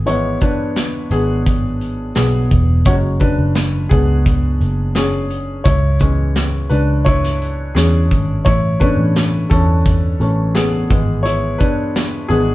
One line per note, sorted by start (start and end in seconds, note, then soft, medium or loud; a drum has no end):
0.00 0.37 G#1 medium
0.00 0.07 B3 medium
0.00 1.11 G#4 medium
0.06 2.82 E3 soft
0.06 2.82 G#3 soft
0.06 1.10 B3 medium
0.06 0.39 E4 medium
0.06 0.43 C#5 medium
0.06 closed hi-hat medium
0.41 1.08 D4 medium
0.41 1.13 B4 medium
0.41 kick medium
0.41 closed hi-hat medium
0.76 snare medium
0.76 clap medium
0.76 closed hi-hat medium
1.11 2.12 G#1 medium
1.11 2.12 B3 medium
1.11 2.14 G#4 medium
1.11 closed hi-hat medium
1.46 kick medium
1.46 closed hi-hat medium
1.81 closed hi-hat soft
2.15 2.49 B1 medium
2.15 2.82 B3 medium
2.15 2.88 G#4 medium
2.15 snare medium
2.15 clap medium
2.15 closed hi-hat medium
2.51 2.84 E1 medium
2.51 kick medium
2.51 closed hi-hat medium
2.85 3.35 F#1 loud
2.85 5.62 F#3 soft
2.85 5.62 G#3 soft
2.85 4.95 C#4 medium
2.85 2.95 F#4 medium
2.85 2.94 C#5 medium
2.85 kick loud
2.85 closed hi-hat medium
3.20 3.87 D4 medium
3.20 3.93 B4 medium
3.20 kick medium
3.20 closed hi-hat medium
3.39 3.87 F#1 medium
3.55 snare medium
3.55 clap medium
3.55 closed hi-hat medium
3.89 4.57 C#2 medium
3.89 4.92 B3 medium
3.89 4.93 G#4 medium
3.89 kick medium
3.89 closed hi-hat medium
4.26 kick medium
4.26 closed hi-hat medium
4.61 5.62 F#1 medium
4.61 closed hi-hat soft
4.95 5.62 C#4 medium
4.95 5.67 G#4 medium
4.95 snare medium
4.95 clap medium
4.95 closed hi-hat medium
5.31 closed hi-hat medium
5.64 6.67 C#2 medium
5.64 6.67 E4 medium
5.64 6.73 C#5 medium
5.64 kick loud
5.64 closed hi-hat medium
6.00 7.02 E3 soft
6.00 7.02 G#3 soft
6.00 7.02 C#4 soft
6.00 kick medium
6.00 closed hi-hat medium
6.36 snare medium
6.36 clap medium
6.36 closed hi-hat medium
6.70 7.72 C#2 medium
6.70 7.04 D4 medium
6.70 7.06 B4 medium
6.70 closed hi-hat medium
7.05 7.72 E4 medium
7.05 7.77 C#5 medium
7.05 kick medium
7.05 closed hi-hat medium
7.24 snare soft
7.42 closed hi-hat soft
7.75 8.13 E2 medium
7.75 8.42 C#4 medium
7.75 8.41 G#4 medium
7.75 snare medium
7.75 clap medium
7.75 closed hi-hat medium
8.11 8.43 G#1 medium
8.11 kick medium
8.11 closed hi-hat medium
8.45 8.94 A1 medium
8.45 8.79 E4 medium
8.45 8.81 C#5 medium
8.45 kick loud
8.45 closed hi-hat medium
8.80 10.18 E3 soft
8.80 10.19 A3 soft
8.80 9.50 C#4 soft
8.80 9.47 D4 medium
8.80 9.46 B4 medium
8.80 kick medium
8.80 closed hi-hat medium
8.97 9.46 A1 medium
9.16 snare medium
9.16 clap medium
9.16 closed hi-hat medium
9.50 10.17 E2 medium
9.50 10.19 C#4 medium
9.50 10.58 A4 medium
9.50 kick medium
9.50 closed hi-hat medium
9.86 kick medium
9.86 closed hi-hat medium
10.20 10.86 A1 medium
10.20 10.52 E3 soft
10.20 10.52 A3 soft
10.20 10.52 C#4 soft
10.20 closed hi-hat soft
10.55 10.89 B3 medium
10.55 11.21 G#4 medium
10.55 snare medium
10.55 clap medium
10.55 closed hi-hat medium
10.90 11.56 G#1 medium
10.90 12.28 E3 soft
10.90 12.29 G#3 soft
10.90 12.29 B3 soft
10.90 kick medium
10.90 closed hi-hat medium
11.23 11.58 E4 medium
11.23 11.60 C#5 medium
11.23 closed hi-hat medium
11.58 12.26 D4 medium
11.58 12.31 B4 medium
11.58 kick medium
11.58 closed hi-hat medium
11.96 snare medium
11.96 clap medium
11.96 closed hi-hat medium
12.28 12.55 G#1 medium
12.28 12.55 E3 soft
12.28 12.55 G#3 soft
12.28 12.55 B3 medium
12.28 12.55 G#4 medium
12.28 closed hi-hat medium